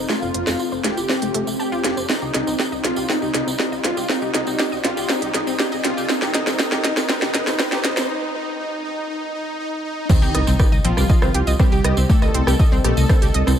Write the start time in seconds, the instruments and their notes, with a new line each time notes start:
Already playing: ambient pad C4 F4 A4, riser
0.09 synth arpeggio sound A3, supersaw synth F4, snare, tambourine
0.22 detuned saw bass F1, synth arpeggio sound F4, tambourine
0.34 detuned saw bass F1, synth arpeggio sound C5, closed hi-hat
0.47 detuned saw bass F1, synth arpeggio sound A3, snare, tambourine
0.59 synth arpeggio sound F4, tambourine
0.72 detuned saw bass F1, synth arpeggio sound C5, tambourine
0.84 detuned saw bass D#1, synth arpeggio sound A3, supersaw synth G4, snare, closed hi-hat
0.97 detuned saw bass F1, synth arpeggio sound F4, tambourine
1.09 synth arpeggio sound C5, snare, tambourine
1.22 detuned saw bass F1, synth arpeggio sound A3, closed hi-hat, tambourine
1.34 detuned saw bass F1, synth arpeggio sound A3, closed hi-hat
1.47 detuned saw bass F1, synth arpeggio sound A3, tambourine
1.59 supersaw synth G4, synth arpeggio sound A5, tambourine
1.72 detuned saw bass F1, synth arpeggio sound F4, tambourine
1.84 detuned saw bass F1, synth arpeggio sound F4, snare, closed hi-hat
1.97 detuned saw bass F1, synth arpeggio sound C5, tambourine
2.09 synth arpeggio sound C4, supersaw synth D#4, ambient pad G4 D5 D#5, snare, tambourine
2.22 detuned saw bass C2, synth arpeggio sound G4, tambourine
2.34 detuned saw bass C2, synth arpeggio sound D#5, snare, closed hi-hat
2.47 detuned saw bass C2, synth arpeggio sound C4, tambourine
2.59 synth arpeggio sound G4, snare, tambourine
2.72 detuned saw bass C2, synth arpeggio sound D#5, tambourine
2.84 detuned saw bass A#1, synth arpeggio sound C4, supersaw synth F4, snare, closed hi-hat
2.96 detuned saw bass C2, synth arpeggio sound G4, tambourine
3.09 synth arpeggio sound C4, supersaw synth D#4, snare, tambourine
3.22 detuned saw bass C2, synth arpeggio sound G4, tambourine
3.34 detuned saw bass C2, synth arpeggio sound D#5, snare, closed hi-hat
3.47 detuned saw bass C2, synth arpeggio sound C4, tambourine
3.59 synth arpeggio sound G4, snare, tambourine
3.72 detuned saw bass C2, synth arpeggio sound D#5, tambourine
3.84 detuned saw bass C2, synth arpeggio sound C4, supersaw synth F4, snare, closed hi-hat
3.97 detuned saw bass C2, synth arpeggio sound G4, tambourine
4.09 synth arpeggio sound C4, supersaw synth D#4, snare, tambourine
4.22 detuned saw bass C2, synth arpeggio sound G4, tambourine
4.34 detuned saw bass C2, synth arpeggio sound D#5, snare, closed hi-hat
4.47 detuned saw bass C2, synth arpeggio sound C4, tambourine
4.59 synth arpeggio sound G4, snare, tambourine
4.72 detuned saw bass C2, synth arpeggio sound D#5, tambourine
4.84 detuned saw bass A#1, synth arpeggio sound C4, supersaw synth F4, snare, closed hi-hat
4.97 detuned saw bass C2, synth arpeggio sound G4, tambourine
5.09 synth arpeggio sound C4, supersaw synth D#4, snare, tambourine
5.22 detuned saw bass C2, synth arpeggio sound G4, closed hi-hat, tambourine
5.34 detuned saw bass C2, synth arpeggio sound D#5, snare, closed hi-hat
5.47 detuned saw bass C2, synth arpeggio sound C4, tambourine
5.59 synth arpeggio sound G4, snare, tambourine
5.72 detuned saw bass C2, synth arpeggio sound D#5, tambourine
5.84 detuned saw bass C2, synth arpeggio sound C4, supersaw synth F4, snare, closed hi-hat
5.97 detuned saw bass C2, synth arpeggio sound G4, tambourine
6.09 synth arpeggio sound C4, ambient pad C4 F4 A4, supersaw synth D#4, snare, tambourine
6.22 detuned saw bass F1, synth arpeggio sound G4, snare, tambourine
6.34 detuned saw bass F1, synth arpeggio sound D#5, snare, closed hi-hat
6.47 detuned saw bass F1, synth arpeggio sound C4, snare, tambourine
6.59 synth arpeggio sound C4, supersaw synth D#4, snare, tambourine
6.72 detuned saw bass F1, synth arpeggio sound G4, snare, tambourine
6.84 detuned saw bass D#1, synth arpeggio sound D#5, snare, closed hi-hat
6.97 detuned saw bass F1, synth arpeggio sound C4, snare, tambourine
7.09 synth arpeggio sound C4, supersaw synth D#4, snare, tambourine
7.22 detuned saw bass F1, synth arpeggio sound G4, snare, tambourine
7.34 detuned saw bass F1, synth arpeggio sound D#5, snare, closed hi-hat
7.47 detuned saw bass F1, synth arpeggio sound C4, snare, tambourine
7.59 synth arpeggio sound C4, supersaw synth D#4, snare, tambourine
7.72 detuned saw bass F1, synth arpeggio sound G4, snare, tambourine
7.84 detuned saw bass F1, synth arpeggio sound D#5, snare, closed hi-hat
7.97 detuned saw bass F1, synth arpeggio sound C4, snare, tambourine
8.09 supersaw synth D#4
8.34 supersaw synth D#4
8.59 supersaw synth D#4
8.84 supersaw synth D#4
9.09 supersaw synth D#4
9.34 supersaw synth D#4
9.59 supersaw synth D#4
9.85 supersaw synth D#4
10.09 synth pluck D#3, synth arpeggio sound C4 C5, ambient pad C4 G4 D5 D#5, supersaw synth D#4, kick, crash, tambourine, impact
10.22 detuned saw bass C2, synth arpeggio sound G4 G5, tambourine
10.34 detuned saw bass C2, synth arpeggio sound D#5 D#6, cross-stick, closed hi-hat
10.47 detuned saw bass C2, synth arpeggio sound C4 C5, tambourine
10.59 synth arpeggio sound G4 G5, kick, cross-stick, tambourine
10.72 detuned saw bass C2, synth arpeggio sound D#5 D#6, tambourine
10.85 detuned saw bass A#1, synth pluck F3, synth arpeggio sound C4 C5, supersaw synth F4, closed hi-hat
10.97 detuned saw bass C2, synth arpeggio sound G4 G5, cross-stick, tambourine
11.09 synth arpeggio sound D#5 D#6, kick, tambourine
11.22 detuned saw bass C2, synth arpeggio sound C4 C5, cross-stick, tambourine
11.34 detuned saw bass C2, synth arpeggio sound G4 G5, closed hi-hat
11.47 detuned saw bass C2, synth arpeggio sound D#5 D#6, tambourine
11.59 synth pluck G3, synth arpeggio sound C4 C5, supersaw synth G4, kick, cross-stick, tambourine
11.72 detuned saw bass C2, synth arpeggio sound G4 G5, tambourine
11.84 detuned saw bass C2, synth arpeggio sound D#5 D#6, cross-stick, closed hi-hat
11.97 detuned saw bass C2, synth arpeggio sound C4 C5, tambourine
12.09 synth pluck A3, synth arpeggio sound G4 G5, supersaw synth A4, kick, tambourine
12.22 detuned saw bass C2, synth arpeggio sound D#5 D#6, cross-stick, tambourine
12.34 detuned saw bass C2, synth arpeggio sound C4 C5, closed hi-hat
12.47 detuned saw bass C2, synth arpeggio sound G4 G5, cross-stick, tambourine
12.59 synth arpeggio sound D#5 D#6, kick, tambourine
12.72 detuned saw bass C2, synth arpeggio sound C4 C5, tambourine
12.84 detuned saw bass A#1, synth pluck A3, synth arpeggio sound G4 G5, supersaw synth A4, cross-stick, closed hi-hat
12.97 detuned saw bass C2, synth arpeggio sound D#5 D#6, tambourine
13.09 synth arpeggio sound C4 C5, kick, cross-stick, tambourine
13.22 detuned saw bass C2, synth arpeggio sound G4 G5, closed hi-hat, tambourine
13.34 detuned saw bass C2, synth arpeggio sound D#5 D#6, closed hi-hat
13.47 detuned saw bass C2, synth arpeggio sound C4 C5, cross-stick, tambourine